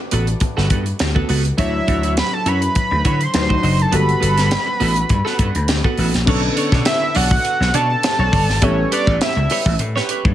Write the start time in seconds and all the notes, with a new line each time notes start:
Already playing: A3 F#4 G4 B4
0.00 muted clean electric guitar stroke
0.11 A1 B3 F#4 A4, closed hi-hat
0.27 muted clean electric guitar stroke, closed hi-hat
0.40 muted clean electric guitar stroke, kick, closed hi-hat
0.57 G1 B3 F#4 A4, snare
0.70 G2 B3 F#4 A4, kick, closed hi-hat
0.86 muted clean electric guitar stroke, closed hi-hat
0.99 D2, muted clean electric guitar stroke, snare, closed hi-hat
1.15 B3 F#4 A4, kick
1.29 C#2 B3 F#4 A4, open hi-hat
1.44 muted clean electric guitar stroke, closed hi-hat
1.57 D2 F#3 D4 E4 F#4 C#5 E5, kick, closed hi-hat
1.74 muted clean electric guitar stroke
1.87 D2 E4 F#4 C#5, kick, closed hi-hat
2.03 E4 F#4 C#5, closed hi-hat
2.17 B5, snare, closed hi-hat
2.33 A5, muted clean electric guitar stroke
2.46 F#2 E4 F#4 C#5 B5, closed hi-hat
2.62 muted clean electric guitar stroke, closed hi-hat
2.75 kick, closed hi-hat
2.91 D2, muted clean electric guitar stroke
3.05 D3 E4 F#4 C#5, kick, closed hi-hat
3.21 C6, muted clean electric guitar stroke, closed hi-hat
3.33 D2 F#3 D4 D#4 B4, muted clean electric guitar stroke, snare, closed hi-hat
3.42 C5
3.49 D#4 F#4 C5, kick
3.63 F#1 D#4 F#4 C5, open hi-hat
3.79 A5, muted clean electric guitar stroke, closed hi-hat
3.92 G1 G3 A#3 B3 F#4 A4 B4 B5, closed hi-hat
3.99 B3
4.08 muted clean electric guitar stroke, closed hi-hat
4.20 G1 B3 F#4 A4, closed hi-hat
4.37 B3 F#4 A4, snare, closed hi-hat
4.51 snare, closed hi-hat
4.67 muted clean electric guitar stroke
4.80 A1 B3 F#4 A4, open hi-hat
4.96 muted clean electric guitar stroke, closed hi-hat
5.09 G2, muted clean electric guitar stroke, kick, closed hi-hat
5.25 B3 F#4 A4, snare
5.39 G2 B3 F#4 A4, kick, closed hi-hat
5.55 D2, muted clean electric guitar stroke, closed hi-hat
5.68 D2, muted clean electric guitar stroke, snare, closed hi-hat
5.84 B3 F#4 A4, kick
5.97 A1 B3 F#4 A4, open hi-hat
6.14 A#1, muted clean electric guitar stroke, snare, closed hi-hat
6.26 B1 D3 B3 C#4 D4 A4 C#5, kick, crash
6.43 muted clean electric guitar stroke
6.56 D4 A4 C#5, closed hi-hat
6.72 B2 D4 A4 C#5, kick, snare
6.85 E5, snare, closed hi-hat
7.02 muted clean electric guitar stroke
7.15 B1 D4 A4 C#5 F#5, open hi-hat
7.31 muted clean electric guitar stroke, kick
7.45 closed hi-hat
7.60 B1, muted clean electric guitar stroke, snare
7.74 B2 D4 A4 C#5 A5, closed hi-hat
7.89 muted clean electric guitar stroke
8.03 muted clean electric guitar stroke, snare, closed hi-hat
8.19 B1 D4 A4 C#5
8.32 G1 D4 A4 C#5, kick, open hi-hat
8.49 G#1, muted clean electric guitar stroke, snare
8.61 A1 G3 B3 C#4 G4 A4 B4 C#5 E5, kick, closed hi-hat
8.79 muted clean electric guitar stroke
8.92 G4 B4 C#5 D5, closed hi-hat
9.07 A1 G4 B4 C#5, kick
9.21 E5, snare, closed hi-hat
9.36 C#2, muted clean electric guitar stroke
9.50 G4 B4 C#5, open hi-hat
9.66 A1, muted clean electric guitar stroke, kick
9.79 A2, muted clean electric guitar stroke, closed hi-hat
9.96 G4 B4 C#5, snare
10.09 G4 B4 C#5, closed hi-hat
10.25 G2, kick